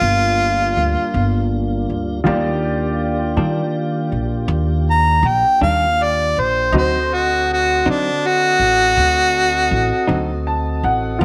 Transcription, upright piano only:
0.00 2.22 F4 medium
0.00 2.23 A#4 medium
0.00 2.22 A5 medium
2.24 6.69 F4 medium
2.24 6.70 G4 medium
2.24 6.70 D5 medium
6.72 11.18 F#4 soft
6.72 11.18 C5 medium
6.72 11.17 D#5 medium
10.47 10.82 A5 medium
10.84 11.19 F#5 medium
11.19 11.25 F4 medium
11.19 11.25 A#4 medium
11.19 11.25 A5 medium

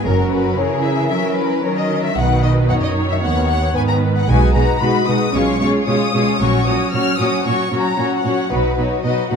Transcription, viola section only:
0.06 0.58 F#3 soft
0.06 0.59 C#4 soft
0.59 1.64 E3 soft
0.59 1.11 E4 soft
1.12 1.63 C#4 soft
1.64 2.16 F#3 soft
1.64 2.16 C#4 soft
2.17 2.69 D#3 soft
2.17 3.21 D#4 soft
2.70 3.74 D#3 soft
3.23 3.74 B3 soft
3.75 4.27 D#3 soft
3.75 4.27 B3 soft
4.29 4.54 G#3 soft
4.29 4.54 D#4 soft
4.55 4.81 G#3 soft
4.55 4.80 D#4 soft
4.82 5.07 G#3 soft
4.82 5.07 D#4 soft
5.08 5.33 G#3 soft
5.08 5.34 D#4 soft
5.34 5.60 G#3 soft
5.34 5.60 C#4 soft
5.61 5.86 G#3 soft
5.61 5.86 C#4 soft
5.87 6.13 G#3 soft
5.87 6.13 C#4 soft
6.14 6.40 G#3 soft
6.14 6.40 C#4 soft
6.41 6.66 F#3 soft
6.41 6.66 C#4 soft
6.67 6.93 F#3 soft
6.67 6.93 C#4 soft
6.94 7.19 F#3 soft
6.94 7.19 C#4 soft
7.20 7.45 F#3 soft
7.20 7.45 C#4 soft
7.46 7.71 F#3 soft
7.46 7.71 C#4 soft
7.72 7.97 F#3 soft
7.72 7.98 C#4 soft
7.98 8.24 F#3 soft
7.98 8.24 C#4 soft
8.25 8.50 F#3 soft
8.25 8.51 C#4 soft
8.52 8.77 F#3 soft
8.52 8.77 D#4 soft
8.78 9.04 F#3 soft
8.78 9.04 D#4 soft
9.05 9.30 F#3 soft
9.05 9.30 D#4 soft
9.31 9.36 F#3 soft
9.31 9.36 D#4 soft

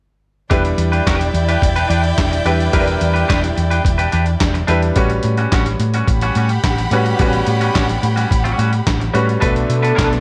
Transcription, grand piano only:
0.51 1.37 G3 medium
0.51 1.38 D4 medium
0.51 1.38 E4 medium
0.51 1.38 B4 medium
2.45 2.67 G3 medium
2.45 2.67 D4 medium
2.45 2.68 E4 medium
2.45 2.68 B4 medium
2.72 3.59 G3 medium
2.72 3.60 D4 medium
2.72 3.60 E4 medium
2.72 2.80 A#4 medium
2.80 3.63 B4 loud
4.68 4.90 G3 medium
4.68 4.90 D4 medium
4.68 4.91 E4 medium
4.68 4.91 B4 medium
4.96 5.83 G3 medium
4.96 5.83 C#4 medium
4.96 5.83 F#4 medium
4.96 5.84 B4 medium
6.91 7.13 G3 medium
6.91 7.14 C#4 medium
6.91 7.14 F#4 medium
6.91 7.14 B4 medium
7.20 8.06 G3 medium
7.20 7.26 B3 medium
7.20 8.07 F#4 medium
7.20 8.07 B4 medium
7.27 8.10 C#4 medium
9.13 9.36 G3 medium
9.13 9.36 C#4 medium
9.13 9.36 F#4 medium
9.13 9.36 B4 medium
9.42 10.20 A3 medium
9.42 10.20 D4 medium
9.42 10.20 F#4 medium
9.42 10.20 B4 medium

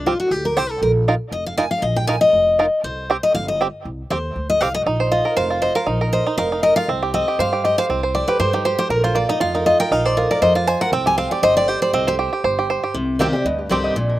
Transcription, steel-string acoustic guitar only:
0.06 0.19 F4 medium
0.20 0.31 F#4 medium
0.31 0.45 G4 medium
0.45 0.57 A#4 medium
0.57 0.70 C5 loud
0.70 0.82 A4 medium
0.82 0.91 A#4 medium
1.32 1.46 D#5 medium
1.46 1.57 F5 medium
1.57 1.70 G#5 loud
1.71 1.82 F5 loud
1.82 1.96 D#5 medium
1.96 2.07 G5 medium
2.07 2.21 G#5 loud
2.21 2.80 D#5 loud
2.84 3.20 C5 medium
3.23 3.34 D#5 loud
3.35 3.48 F5 loud
3.48 3.60 D#5 medium
4.10 4.47 C5 medium
4.50 4.61 D#5 loud
4.61 4.74 F5 medium
4.74 4.81 D#5 loud
5.12 5.35 D#5 loud
5.37 5.60 F5 loud
5.62 5.75 D#5 medium
5.75 5.87 F5 loud
6.13 6.36 D#5 medium
6.38 6.61 F5 loud
6.63 6.75 D#5 medium
6.76 6.88 F5 loud
7.14 7.37 D#5 loud
7.40 7.63 F5 loud
7.65 7.78 D#5 medium
7.78 7.85 F5 loud
8.15 8.28 D5 medium
8.28 8.39 B4 medium
8.40 8.53 C5 loud
8.53 8.65 D#4 medium
8.65 8.79 G4 medium
8.79 8.90 C5 loud
8.90 9.04 A#4 medium
9.04 9.15 C5 medium
9.15 9.29 D5 medium
9.29 9.40 D#5 loud
9.41 9.54 F5 loud
9.55 9.66 A#4 medium
9.66 9.79 D#5 medium
9.80 9.92 G5 loud
9.92 10.05 F5 loud
10.05 10.16 D5 medium
10.17 10.30 A#4 medium
10.31 10.41 D5 medium
10.42 10.55 D#5 loud
10.55 10.67 F5 loud
10.67 10.81 G#5 loud
10.81 10.92 F#5 loud
10.93 11.06 G5 medium
11.07 11.17 G#5 loud
11.18 11.31 F5 loud
11.31 11.42 D5 medium
11.43 11.56 D#5 loud
11.57 11.68 D5 loud
11.68 11.81 C5 medium
11.82 11.93 D5 loud
11.93 12.07 D#5 loud
12.08 12.15 G4 loud
12.94 13.43 C3 medium
13.19 13.33 D#3 medium
13.19 13.33 G3 medium
13.19 13.34 C4 loud
13.19 13.32 G4 loud
13.33 13.46 C4 soft
13.33 13.44 G4 medium
13.46 13.94 G2 medium
13.69 13.94 D#3 medium
13.69 13.95 G3 medium
13.69 13.95 C4 medium
13.69 13.96 G4 loud
13.96 14.20 A#2 medium

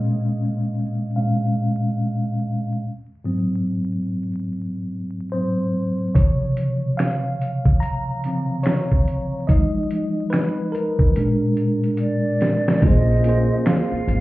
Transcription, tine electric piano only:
0.00 1.16 A#2 soft
0.00 1.16 G#3 soft
0.00 1.16 C#4 medium
0.00 1.21 D#5 medium
0.00 1.16 F5 medium
1.16 1.54 A#2 soft
1.16 1.54 G#3 soft
1.16 1.54 C#4 soft
1.16 2.37 F5 medium
3.24 3.84 G#2 medium
3.24 3.84 F#3 soft
3.24 3.84 C4 medium
5.32 5.71 G#2 soft
5.32 5.71 F#3 soft
5.32 5.71 C4 soft
5.32 6.18 C5 medium
6.15 6.76 C3 soft
6.15 6.75 C#3 soft
6.15 6.76 F3 soft
6.15 7.01 C#5 medium
6.97 7.84 F5 medium
7.80 8.67 A#5 loud
8.25 8.62 C#3 soft
8.25 8.63 F3 soft
8.25 8.63 C4 soft
8.63 9.44 C#5 medium
9.47 11.12 F3 soft
9.47 11.12 G#3 soft
9.47 11.13 D#4 medium
9.47 10.34 D#5 medium
10.30 10.74 B4 medium
10.72 12.36 A#4 medium
11.16 11.75 A#2 medium
11.16 11.75 G#3 medium
11.16 11.76 D4 medium
12.80 13.20 A#3 medium
12.80 13.22 C#4 medium
12.80 13.23 F4 medium
12.86 13.24 G#4 medium
12.86 13.24 C5 medium
13.21 14.21 A#3 medium
13.21 14.21 C#4 medium
13.25 14.21 F4 medium
13.25 14.21 G#4 medium
13.25 14.21 C5 medium

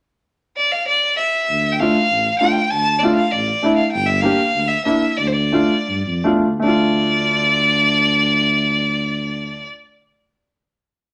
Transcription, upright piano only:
1.80 1.95 A3 medium
1.80 1.96 D4 medium
1.80 1.96 F4 medium
2.40 2.56 A3 soft
2.40 2.56 D4 soft
2.40 2.57 F4 medium
3.02 3.18 A3 medium
3.02 3.18 D4 medium
3.02 3.19 F4 medium
3.62 3.78 A3 medium
3.62 3.79 D4 medium
3.62 3.79 E4 medium
4.22 4.39 A#3 medium
4.22 4.39 D4 soft
4.22 4.40 G4 medium
4.85 5.02 A#3 medium
4.85 5.03 D4 medium
4.85 5.03 E4 medium
5.52 5.70 A3 medium
5.52 5.71 D4 medium
5.52 5.71 F4 medium
6.24 6.44 A3 medium
6.24 6.44 D4 medium
6.24 6.45 F4 medium
6.60 9.62 A3 medium
6.60 9.66 D4 medium
6.68 9.71 F4 medium

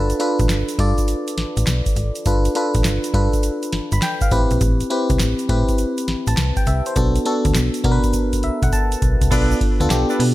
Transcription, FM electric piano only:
0.00 0.17 D4 medium
0.00 0.18 F4 medium
0.00 0.18 A4 medium
0.00 0.18 B4 medium
0.19 0.74 D4 medium
0.19 0.74 F4 medium
0.19 0.74 A4 medium
0.19 0.75 B4 medium
0.79 1.87 D4 medium
0.79 1.87 F4 medium
0.79 1.88 A4 medium
0.79 1.88 D5 medium
2.26 2.53 D4 medium
2.26 2.53 F4 medium
2.26 2.53 A4 medium
2.26 2.54 B4 medium
2.55 3.09 D4 medium
2.55 3.10 F4 medium
2.55 3.10 A4 medium
2.55 3.10 B4 medium
3.14 4.22 D4 medium
3.14 4.22 F4 medium
3.14 4.23 A4 medium
3.14 4.23 B4 medium
3.93 4.02 B5 medium
4.03 4.21 G5 medium
4.22 4.50 F5 medium
4.31 4.86 C4 medium
4.31 4.86 E4 medium
4.31 4.86 G4 medium
4.31 4.86 B4 loud
4.90 5.44 C4 medium
4.90 5.45 E4 medium
4.90 5.45 G4 medium
4.90 5.45 B4 medium
5.49 6.58 C4 medium
5.49 6.58 E4 medium
5.49 6.58 G4 medium
5.49 6.08 B4 medium
6.28 6.55 A5 medium
6.57 6.66 G5 medium
6.67 6.85 E5 medium
6.87 7.14 C5 medium
6.96 7.23 B3 medium
6.96 7.23 D4 medium
6.96 7.24 F#4 medium
6.96 7.24 A4 medium
7.25 7.80 B3 medium
7.25 7.80 D4 medium
7.25 7.80 F#4 medium
7.25 7.80 A4 loud
7.84 8.93 B3 medium
7.84 8.93 D4 medium
7.84 8.93 F#4 medium
7.84 7.93 A#4 medium
7.92 8.97 B4 loud
8.44 8.62 E5 medium
8.63 8.72 F#5 medium
8.73 9.28 A5 medium
9.31 9.74 B3 medium
9.31 9.74 D4 medium
9.31 9.74 F4 medium
9.31 9.74 A4 loud
9.80 9.89 B3 medium
9.80 9.89 D4 medium
9.80 9.90 F4 medium
9.80 9.90 A4 loud
9.90 10.34 B3 medium
9.90 10.34 D4 medium
9.90 10.34 F4 medium
9.90 10.34 G4 loud

